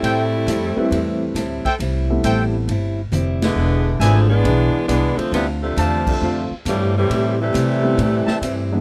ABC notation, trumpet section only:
X:1
M:4/4
L:1/8
Q:"Swing" 1/4=136
K:Am
V:1 name="Trumpet section"
[Aceg] z6 [Aceg] | z2 [Aceg] z4 z | z2 [Bde^g] z4 z | z2 [cdfa]3 z3 |
z4 z [cega] z2 |]